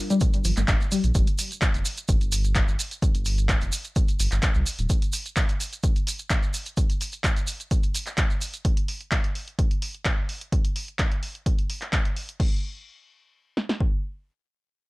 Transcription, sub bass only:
0.45 G1
0.57 G1
0.68 G1
1.04 A#1
1.15 G1
1.74 F1
2.09 G1
2.68 G1
3.15 G1
3.62 F1
4.20 G1
4.32 G1
4.55 C2
4.79 D1

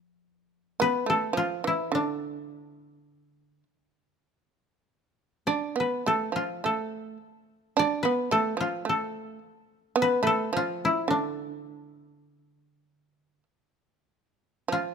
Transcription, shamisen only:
0.80 B3
1.06 A3
1.33 F3
1.64 E3
1.92 D3
5.47 D4
5.76 B3
6.06 A3
6.32 F3
6.64 A3
7.77 D4
8.05 B3
8.31 A3
8.57 F3
8.85 A3
9.96 B3
10.23 A3
10.53 F3
11.08 D3
14.68 F3

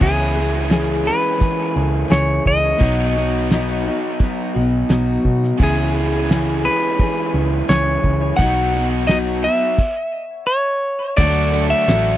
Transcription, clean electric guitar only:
0.02 G#4
1.07 B4
1.82 A4
2.12 C#5
2.47 D#5
5.63 G#4
6.65 B4
7.69 C#5
8.37 F#5
9.07 D#5
9.44 E5
10.47 C#5
11.17 D5
11.70 E5

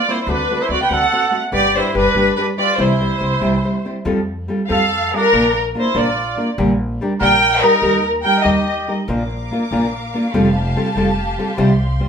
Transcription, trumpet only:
Already playing: F4
0.09 E4
0.20 E4
0.29 D4
0.62 E4
0.73 F#4
0.82 B4
0.93 A4
1.55 G4
1.78 E4
1.97 D4
2.41 D4
2.61 F4
2.81 E4
4.71 A4
5.15 D4
5.78 E4
5.99 F4
7.21 A#4
7.61 D#4
8.23 A#4
8.43 G4

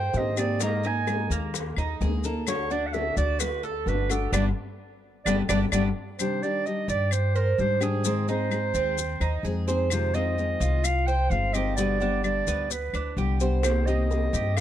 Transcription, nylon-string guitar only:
0.14 D#3 A#3 C4 G4
0.37 D#3 A#3 C4 G4
0.61 G#3 A#3 D#4 A#4
0.85 A#3 D#4 A#4
1.08 G#3 A#3 D#4 A#4
1.54 muted nylon-string guitar stroke
2.02 G#3 A#3 D#4 A#4
2.25 A#3 D#4 A#4
2.47 D3 A3 D4 F#4
2.70 A3 D4 F#4
2.95 D3 A3 D4 F#4
3.41 muted nylon-string guitar stroke
3.86 D3 A3 D4 F#4
4.10 A3 D4 F#4
4.34 G3 B3 D4
5.27 G3 B3 D4
5.50 G3 B3 D4
5.74 G3 B3 D4
6.19 C3 D#3 G3 D4 G4
6.44 D#3 G3 D4 G4
6.66 D#3 G3 D4 G4
7.12 muted nylon-string guitar stroke
7.58 D#3 G3 D4 G4
7.80 D#3 G3 D4 G4
8.05 D#3 G#3 C4 D#4 G#4
8.29 G#3 C4 D#4 G#4
8.51 G#3 C4 D#4 G#4
8.98 muted nylon-string guitar stroke
9.45 G#3 C4 D#4 G#4
9.68 G#3 C4 D#4 G#4
9.91 C3 D#3 G#3 C4 F4
10.15 D#3 G#3 C4 F4
10.38 D#3 G#3 C4 F4
10.84 muted nylon-string guitar stroke
11.30 D#3 G#3 C4 F4
11.55 D#3 G#3 C4 F4
11.77 B2 D3 G3 B3 G4
12.00 D3 G3 B3 G4
12.23 D3 G3 B3 G4
12.70 muted nylon-string guitar stroke
13.17 D3 G3 B3 G4
13.40 D3 G3 B3 G4
13.63 C3 D#3 A#3 C4 G4
13.87 D#3 A#3 C4 G4
14.10 D#3 A#3 C4 G4
14.57 muted nylon-string guitar stroke

